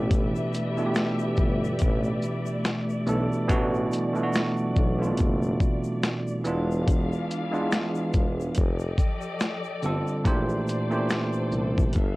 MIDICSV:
0, 0, Header, 1, 5, 480
1, 0, Start_track
1, 0, Tempo, 845070
1, 61, Time_signature, 4, 2, 24, 8
1, 6909, End_track
2, 0, Start_track
2, 0, Title_t, "String section"
2, 0, Program_c, 0, 48
2, 0, Note_on_c, 0, 57, 76
2, 0, Note_on_c, 0, 67, 72
2, 0, Note_on_c, 0, 71, 77
2, 0, Note_on_c, 0, 74, 74
2, 0, Note_on_c, 0, 76, 91
2, 1960, Note_off_c, 0, 67, 0
2, 1961, Note_off_c, 0, 71, 0
2, 1961, Note_off_c, 0, 76, 0
2, 1982, Note_on_c, 0, 54, 71
2, 3639, Note_off_c, 0, 74, 0
2, 3641, Note_off_c, 0, 57, 0
2, 3645, Note_off_c, 0, 54, 0
2, 3663, Note_on_c, 0, 68, 75
2, 3664, Note_on_c, 0, 52, 79
2, 3665, Note_on_c, 0, 62, 77
2, 3667, Note_on_c, 0, 77, 88
2, 4850, Note_off_c, 0, 52, 0
2, 4850, Note_off_c, 0, 68, 0
2, 4851, Note_off_c, 0, 62, 0
2, 4852, Note_off_c, 0, 77, 0
2, 4862, Note_on_c, 0, 75, 77
2, 4863, Note_on_c, 0, 67, 72
2, 4864, Note_on_c, 0, 53, 80
2, 4864, Note_on_c, 0, 69, 79
2, 4865, Note_on_c, 0, 74, 99
2, 5812, Note_off_c, 0, 67, 0
2, 5812, Note_off_c, 0, 75, 0
2, 5813, Note_off_c, 0, 53, 0
2, 5813, Note_off_c, 0, 69, 0
2, 5813, Note_off_c, 0, 74, 0
2, 5825, Note_on_c, 0, 74, 83
2, 5826, Note_on_c, 0, 69, 64
2, 5826, Note_on_c, 0, 72, 72
2, 5827, Note_on_c, 0, 46, 69
2, 6773, Note_off_c, 0, 74, 0
2, 6774, Note_off_c, 0, 46, 0
2, 6774, Note_off_c, 0, 72, 0
2, 6784, Note_on_c, 0, 71, 67
2, 6786, Note_on_c, 0, 76, 82
2, 6787, Note_on_c, 0, 77, 68
2, 6790, Note_on_c, 0, 55, 76
2, 6909, Note_off_c, 0, 55, 0
2, 6909, Note_off_c, 0, 69, 0
2, 6909, Note_off_c, 0, 71, 0
2, 6909, Note_off_c, 0, 76, 0
2, 6909, Note_off_c, 0, 77, 0
2, 6909, End_track
3, 0, Start_track
3, 0, Title_t, "Tine electric piano"
3, 0, Program_c, 1, 4
3, 0, Control_c, 1, 64, 127
3, 0, Note_on_c, 1, 47, 90
3, 0, Note_on_c, 1, 52, 88
3, 0, Note_on_c, 1, 57, 72
3, 0, Note_on_c, 1, 62, 84
3, 0, Note_on_c, 1, 67, 95
3, 324, Note_off_c, 1, 47, 0
3, 325, Note_off_c, 1, 52, 0
3, 328, Note_off_c, 1, 57, 0
3, 330, Note_off_c, 1, 62, 0
3, 331, Note_off_c, 1, 67, 0
3, 435, Note_on_c, 1, 47, 86
3, 439, Note_on_c, 1, 52, 80
3, 444, Note_on_c, 1, 57, 80
3, 447, Note_on_c, 1, 62, 71
3, 453, Note_on_c, 1, 65, 70
3, 477, Note_off_c, 1, 65, 0
3, 490, Note_on_c, 1, 67, 93
3, 1230, Note_off_c, 1, 47, 0
3, 1232, Note_off_c, 1, 52, 0
3, 1234, Note_off_c, 1, 57, 0
3, 1236, Note_off_c, 1, 62, 0
3, 1257, Note_off_c, 1, 67, 0
3, 1738, Note_on_c, 1, 47, 87
3, 1741, Note_on_c, 1, 52, 76
3, 1747, Note_on_c, 1, 57, 85
3, 1749, Note_on_c, 1, 62, 76
3, 1755, Note_on_c, 1, 69, 93
3, 1946, Note_off_c, 1, 47, 0
3, 1947, Note_off_c, 1, 52, 0
3, 1950, Note_off_c, 1, 57, 0
3, 1951, Note_off_c, 1, 62, 0
3, 1954, Note_off_c, 1, 69, 0
3, 1973, Note_on_c, 1, 47, 117
3, 1978, Note_on_c, 1, 52, 109
3, 1983, Note_on_c, 1, 57, 98
3, 1987, Note_on_c, 1, 62, 105
3, 1988, Control_c, 1, 64, 0
3, 1991, Note_on_c, 1, 66, 119
3, 2075, Control_c, 1, 64, 127
3, 2287, Note_off_c, 1, 47, 0
3, 2290, Note_off_c, 1, 52, 0
3, 2292, Note_off_c, 1, 57, 0
3, 2294, Note_off_c, 1, 62, 0
3, 2296, Note_off_c, 1, 66, 0
3, 2349, Note_on_c, 1, 47, 90
3, 2354, Note_on_c, 1, 52, 73
3, 2360, Note_on_c, 1, 57, 80
3, 2363, Note_on_c, 1, 62, 86
3, 2367, Note_on_c, 1, 65, 70
3, 2394, Note_off_c, 1, 65, 0
3, 2403, Note_on_c, 1, 66, 106
3, 2745, Note_off_c, 1, 47, 0
3, 2748, Note_off_c, 1, 52, 0
3, 2751, Note_off_c, 1, 57, 0
3, 2752, Note_off_c, 1, 62, 0
3, 2772, Note_off_c, 1, 66, 0
3, 2831, Note_on_c, 1, 47, 81
3, 2835, Note_on_c, 1, 64, 74
3, 2839, Note_on_c, 1, 57, 73
3, 2845, Note_on_c, 1, 60, 57
3, 2849, Note_on_c, 1, 65, 87
3, 2873, Note_off_c, 1, 60, 0
3, 2881, Note_on_c, 1, 62, 65
3, 3628, Note_off_c, 1, 47, 0
3, 3630, Note_off_c, 1, 64, 0
3, 3632, Note_off_c, 1, 57, 0
3, 3637, Note_off_c, 1, 65, 0
3, 3653, Note_off_c, 1, 62, 0
3, 3659, Note_on_c, 1, 52, 93
3, 3663, Note_on_c, 1, 56, 83
3, 3668, Control_c, 1, 64, 0
3, 3668, Note_on_c, 1, 59, 82
3, 3671, Note_on_c, 1, 62, 86
3, 3676, Note_on_c, 1, 65, 93
3, 3777, Control_c, 1, 64, 127
3, 4166, Note_off_c, 1, 52, 0
3, 4168, Note_off_c, 1, 56, 0
3, 4171, Note_off_c, 1, 59, 0
3, 4173, Note_off_c, 1, 62, 0
3, 4175, Note_off_c, 1, 65, 0
3, 4268, Note_on_c, 1, 52, 89
3, 4271, Note_on_c, 1, 56, 85
3, 4275, Note_on_c, 1, 59, 84
3, 4278, Note_on_c, 1, 62, 85
3, 4285, Note_on_c, 1, 65, 90
3, 4856, Note_off_c, 1, 52, 0
3, 4858, Note_off_c, 1, 56, 0
3, 4860, Note_off_c, 1, 59, 0
3, 4862, Note_off_c, 1, 62, 0
3, 4865, Note_off_c, 1, 65, 0
3, 4867, Control_c, 1, 64, 0
3, 4981, Control_c, 1, 64, 127
3, 5581, Note_on_c, 1, 50, 84
3, 5585, Note_on_c, 1, 55, 68
3, 5590, Note_on_c, 1, 60, 75
3, 5594, Note_on_c, 1, 65, 78
3, 5598, Note_on_c, 1, 69, 97
3, 5787, Note_off_c, 1, 50, 0
3, 5789, Note_off_c, 1, 55, 0
3, 5792, Note_off_c, 1, 60, 0
3, 5794, Note_off_c, 1, 65, 0
3, 5796, Note_off_c, 1, 69, 0
3, 5817, Note_on_c, 1, 46, 115
3, 5819, Note_on_c, 1, 52, 98
3, 5824, Note_on_c, 1, 57, 93
3, 5826, Note_on_c, 1, 62, 102
3, 5827, Control_c, 1, 64, 0
3, 5830, Note_on_c, 1, 67, 96
3, 5835, Note_on_c, 1, 72, 120
3, 5926, Control_c, 1, 64, 127
3, 6129, Note_off_c, 1, 46, 0
3, 6130, Note_off_c, 1, 52, 0
3, 6133, Note_off_c, 1, 57, 0
3, 6134, Note_off_c, 1, 62, 0
3, 6135, Note_off_c, 1, 67, 0
3, 6138, Note_off_c, 1, 72, 0
3, 6190, Note_on_c, 1, 46, 88
3, 6192, Note_on_c, 1, 52, 84
3, 6196, Note_on_c, 1, 57, 81
3, 6199, Note_on_c, 1, 61, 64
3, 6203, Note_on_c, 1, 67, 82
3, 6207, Note_on_c, 1, 72, 88
3, 6230, Note_off_c, 1, 61, 0
3, 6239, Note_on_c, 1, 62, 72
3, 6777, Note_off_c, 1, 46, 0
3, 6779, Note_off_c, 1, 52, 0
3, 6780, Note_off_c, 1, 57, 0
3, 6784, Note_off_c, 1, 67, 0
3, 6786, Note_off_c, 1, 72, 0
3, 6789, Control_c, 1, 64, 0
3, 6802, Note_off_c, 1, 62, 0
3, 6891, Control_c, 1, 64, 127
3, 6909, End_track
4, 0, Start_track
4, 0, Title_t, "Tuba"
4, 0, Program_c, 2, 58
4, 0, Note_on_c, 2, 33, 90
4, 228, Note_off_c, 2, 33, 0
4, 785, Note_on_c, 2, 31, 88
4, 986, Note_off_c, 2, 31, 0
4, 1036, Note_on_c, 2, 33, 100
4, 1233, Note_off_c, 2, 33, 0
4, 1744, Note_on_c, 2, 35, 95
4, 1857, Note_off_c, 2, 35, 0
4, 1985, Note_on_c, 2, 33, 113
4, 2186, Note_off_c, 2, 33, 0
4, 2709, Note_on_c, 2, 35, 92
4, 2959, Note_on_c, 2, 30, 105
4, 2967, Note_off_c, 2, 35, 0
4, 3154, Note_off_c, 2, 30, 0
4, 3668, Note_on_c, 2, 28, 93
4, 4072, Note_off_c, 2, 28, 0
4, 4625, Note_on_c, 2, 28, 82
4, 4826, Note_off_c, 2, 28, 0
4, 4874, Note_on_c, 2, 29, 109
4, 5071, Note_off_c, 2, 29, 0
4, 5582, Note_on_c, 2, 31, 79
4, 5696, Note_off_c, 2, 31, 0
4, 5825, Note_on_c, 2, 34, 90
4, 6026, Note_off_c, 2, 34, 0
4, 6541, Note_on_c, 2, 36, 89
4, 6744, Note_off_c, 2, 36, 0
4, 6792, Note_on_c, 2, 31, 108
4, 6909, Note_off_c, 2, 31, 0
4, 6909, End_track
5, 0, Start_track
5, 0, Title_t, "Drums"
5, 62, Note_on_c, 9, 36, 122
5, 63, Note_on_c, 9, 42, 73
5, 71, Note_on_c, 9, 82, 58
5, 119, Note_off_c, 9, 36, 0
5, 120, Note_off_c, 9, 42, 0
5, 128, Note_off_c, 9, 82, 0
5, 203, Note_on_c, 9, 82, 50
5, 259, Note_off_c, 9, 82, 0
5, 304, Note_on_c, 9, 82, 49
5, 311, Note_off_c, 9, 82, 0
5, 311, Note_on_c, 9, 42, 58
5, 311, Note_on_c, 9, 82, 60
5, 367, Note_off_c, 9, 42, 0
5, 367, Note_off_c, 9, 82, 0
5, 439, Note_on_c, 9, 82, 39
5, 496, Note_off_c, 9, 82, 0
5, 537, Note_on_c, 9, 82, 73
5, 546, Note_on_c, 9, 26, 99
5, 546, Note_on_c, 9, 38, 126
5, 550, Note_on_c, 9, 42, 65
5, 594, Note_off_c, 9, 82, 0
5, 602, Note_off_c, 9, 26, 0
5, 603, Note_off_c, 9, 38, 0
5, 607, Note_off_c, 9, 42, 0
5, 676, Note_on_c, 9, 82, 49
5, 733, Note_off_c, 9, 82, 0
5, 778, Note_on_c, 9, 82, 42
5, 784, Note_on_c, 9, 36, 89
5, 835, Note_off_c, 9, 82, 0
5, 840, Note_off_c, 9, 36, 0
5, 934, Note_on_c, 9, 82, 52
5, 991, Note_off_c, 9, 82, 0
5, 1016, Note_on_c, 9, 42, 65
5, 1026, Note_on_c, 9, 82, 62
5, 1033, Note_on_c, 9, 36, 82
5, 1073, Note_off_c, 9, 42, 0
5, 1083, Note_off_c, 9, 82, 0
5, 1090, Note_off_c, 9, 36, 0
5, 1158, Note_on_c, 9, 82, 44
5, 1215, Note_off_c, 9, 82, 0
5, 1262, Note_on_c, 9, 82, 39
5, 1269, Note_off_c, 9, 82, 0
5, 1269, Note_on_c, 9, 82, 52
5, 1325, Note_off_c, 9, 82, 0
5, 1397, Note_on_c, 9, 82, 56
5, 1454, Note_off_c, 9, 82, 0
5, 1505, Note_on_c, 9, 82, 59
5, 1506, Note_on_c, 9, 26, 82
5, 1506, Note_on_c, 9, 38, 119
5, 1512, Note_on_c, 9, 42, 77
5, 1562, Note_off_c, 9, 26, 0
5, 1562, Note_off_c, 9, 82, 0
5, 1563, Note_off_c, 9, 38, 0
5, 1568, Note_off_c, 9, 42, 0
5, 1644, Note_on_c, 9, 82, 46
5, 1701, Note_off_c, 9, 82, 0
5, 1743, Note_on_c, 9, 82, 48
5, 1752, Note_off_c, 9, 82, 0
5, 1752, Note_on_c, 9, 82, 54
5, 1809, Note_off_c, 9, 82, 0
5, 1889, Note_on_c, 9, 82, 47
5, 1946, Note_off_c, 9, 82, 0
5, 1984, Note_on_c, 9, 42, 80
5, 1985, Note_on_c, 9, 36, 104
5, 1990, Note_on_c, 9, 82, 66
5, 2041, Note_off_c, 9, 42, 0
5, 2042, Note_off_c, 9, 36, 0
5, 2047, Note_off_c, 9, 82, 0
5, 2125, Note_on_c, 9, 82, 48
5, 2182, Note_off_c, 9, 82, 0
5, 2224, Note_on_c, 9, 82, 56
5, 2234, Note_off_c, 9, 82, 0
5, 2234, Note_on_c, 9, 42, 60
5, 2234, Note_on_c, 9, 82, 57
5, 2291, Note_off_c, 9, 42, 0
5, 2291, Note_off_c, 9, 82, 0
5, 2360, Note_on_c, 9, 82, 39
5, 2417, Note_off_c, 9, 82, 0
5, 2459, Note_on_c, 9, 82, 79
5, 2474, Note_on_c, 9, 26, 98
5, 2474, Note_on_c, 9, 38, 125
5, 2478, Note_on_c, 9, 42, 65
5, 2516, Note_off_c, 9, 82, 0
5, 2531, Note_off_c, 9, 26, 0
5, 2531, Note_off_c, 9, 38, 0
5, 2535, Note_off_c, 9, 42, 0
5, 2595, Note_on_c, 9, 82, 52
5, 2652, Note_off_c, 9, 82, 0
5, 2705, Note_on_c, 9, 82, 45
5, 2707, Note_on_c, 9, 36, 83
5, 2762, Note_off_c, 9, 82, 0
5, 2764, Note_off_c, 9, 36, 0
5, 2859, Note_on_c, 9, 82, 58
5, 2915, Note_off_c, 9, 82, 0
5, 2939, Note_on_c, 9, 42, 59
5, 2948, Note_on_c, 9, 82, 62
5, 2957, Note_on_c, 9, 36, 79
5, 2996, Note_off_c, 9, 42, 0
5, 3005, Note_off_c, 9, 82, 0
5, 3014, Note_off_c, 9, 36, 0
5, 3082, Note_on_c, 9, 82, 48
5, 3139, Note_off_c, 9, 82, 0
5, 3183, Note_on_c, 9, 36, 94
5, 3186, Note_on_c, 9, 82, 40
5, 3190, Note_off_c, 9, 82, 0
5, 3190, Note_on_c, 9, 82, 50
5, 3240, Note_off_c, 9, 36, 0
5, 3247, Note_off_c, 9, 82, 0
5, 3316, Note_on_c, 9, 82, 51
5, 3373, Note_off_c, 9, 82, 0
5, 3425, Note_on_c, 9, 82, 61
5, 3428, Note_on_c, 9, 26, 98
5, 3429, Note_on_c, 9, 38, 115
5, 3434, Note_on_c, 9, 42, 74
5, 3482, Note_off_c, 9, 82, 0
5, 3485, Note_off_c, 9, 26, 0
5, 3485, Note_off_c, 9, 38, 0
5, 3491, Note_off_c, 9, 42, 0
5, 3563, Note_on_c, 9, 82, 51
5, 3620, Note_off_c, 9, 82, 0
5, 3662, Note_on_c, 9, 82, 53
5, 3673, Note_off_c, 9, 82, 0
5, 3673, Note_on_c, 9, 82, 52
5, 3729, Note_off_c, 9, 82, 0
5, 3812, Note_on_c, 9, 82, 52
5, 3869, Note_off_c, 9, 82, 0
5, 3905, Note_on_c, 9, 36, 117
5, 3906, Note_on_c, 9, 42, 71
5, 3917, Note_on_c, 9, 82, 62
5, 3962, Note_off_c, 9, 36, 0
5, 3963, Note_off_c, 9, 42, 0
5, 3973, Note_off_c, 9, 82, 0
5, 4046, Note_on_c, 9, 82, 46
5, 4103, Note_off_c, 9, 82, 0
5, 4152, Note_on_c, 9, 42, 60
5, 4152, Note_on_c, 9, 82, 54
5, 4209, Note_off_c, 9, 42, 0
5, 4209, Note_off_c, 9, 82, 0
5, 4282, Note_on_c, 9, 82, 43
5, 4339, Note_off_c, 9, 82, 0
5, 4384, Note_on_c, 9, 82, 78
5, 4387, Note_on_c, 9, 26, 104
5, 4387, Note_on_c, 9, 38, 112
5, 4391, Note_on_c, 9, 42, 62
5, 4440, Note_off_c, 9, 82, 0
5, 4444, Note_off_c, 9, 26, 0
5, 4444, Note_off_c, 9, 38, 0
5, 4448, Note_off_c, 9, 42, 0
5, 4515, Note_on_c, 9, 82, 47
5, 4572, Note_off_c, 9, 82, 0
5, 4617, Note_on_c, 9, 82, 50
5, 4622, Note_off_c, 9, 82, 0
5, 4622, Note_on_c, 9, 42, 44
5, 4622, Note_on_c, 9, 82, 41
5, 4624, Note_on_c, 9, 36, 85
5, 4679, Note_off_c, 9, 42, 0
5, 4679, Note_off_c, 9, 82, 0
5, 4681, Note_off_c, 9, 36, 0
5, 4774, Note_on_c, 9, 82, 55
5, 4831, Note_off_c, 9, 82, 0
5, 4855, Note_on_c, 9, 42, 71
5, 4863, Note_on_c, 9, 82, 66
5, 4873, Note_on_c, 9, 36, 85
5, 4912, Note_off_c, 9, 42, 0
5, 4920, Note_off_c, 9, 82, 0
5, 4930, Note_off_c, 9, 36, 0
5, 4994, Note_on_c, 9, 82, 50
5, 5051, Note_off_c, 9, 82, 0
5, 5100, Note_on_c, 9, 36, 80
5, 5103, Note_on_c, 9, 82, 43
5, 5105, Note_off_c, 9, 82, 0
5, 5105, Note_on_c, 9, 82, 50
5, 5157, Note_off_c, 9, 36, 0
5, 5162, Note_off_c, 9, 82, 0
5, 5234, Note_on_c, 9, 82, 54
5, 5290, Note_off_c, 9, 82, 0
5, 5337, Note_on_c, 9, 82, 61
5, 5344, Note_on_c, 9, 26, 89
5, 5344, Note_on_c, 9, 38, 120
5, 5350, Note_on_c, 9, 42, 82
5, 5394, Note_off_c, 9, 82, 0
5, 5401, Note_off_c, 9, 26, 0
5, 5401, Note_off_c, 9, 38, 0
5, 5407, Note_off_c, 9, 42, 0
5, 5474, Note_on_c, 9, 82, 50
5, 5531, Note_off_c, 9, 82, 0
5, 5581, Note_on_c, 9, 82, 50
5, 5583, Note_off_c, 9, 82, 0
5, 5583, Note_on_c, 9, 82, 47
5, 5640, Note_off_c, 9, 82, 0
5, 5721, Note_on_c, 9, 82, 46
5, 5778, Note_off_c, 9, 82, 0
5, 5823, Note_on_c, 9, 36, 117
5, 5826, Note_on_c, 9, 42, 73
5, 5827, Note_on_c, 9, 82, 65
5, 5880, Note_off_c, 9, 36, 0
5, 5883, Note_off_c, 9, 42, 0
5, 5884, Note_off_c, 9, 82, 0
5, 5960, Note_on_c, 9, 82, 49
5, 6016, Note_off_c, 9, 82, 0
5, 6062, Note_on_c, 9, 82, 48
5, 6072, Note_off_c, 9, 82, 0
5, 6072, Note_on_c, 9, 42, 53
5, 6072, Note_on_c, 9, 82, 57
5, 6129, Note_off_c, 9, 42, 0
5, 6129, Note_off_c, 9, 82, 0
5, 6198, Note_on_c, 9, 82, 38
5, 6255, Note_off_c, 9, 82, 0
5, 6299, Note_on_c, 9, 82, 63
5, 6308, Note_on_c, 9, 26, 102
5, 6308, Note_on_c, 9, 38, 114
5, 6312, Note_on_c, 9, 42, 68
5, 6356, Note_off_c, 9, 82, 0
5, 6364, Note_off_c, 9, 26, 0
5, 6365, Note_off_c, 9, 38, 0
5, 6369, Note_off_c, 9, 42, 0
5, 6435, Note_on_c, 9, 82, 49
5, 6492, Note_off_c, 9, 82, 0
5, 6543, Note_on_c, 9, 82, 42
5, 6600, Note_off_c, 9, 82, 0
5, 6690, Note_on_c, 9, 36, 85
5, 6694, Note_on_c, 9, 82, 56
5, 6747, Note_off_c, 9, 36, 0
5, 6751, Note_off_c, 9, 82, 0
5, 6775, Note_on_c, 9, 42, 64
5, 6785, Note_on_c, 9, 82, 57
5, 6793, Note_on_c, 9, 36, 77
5, 6832, Note_off_c, 9, 42, 0
5, 6842, Note_off_c, 9, 82, 0
5, 6849, Note_off_c, 9, 36, 0
5, 6909, End_track
0, 0, End_of_file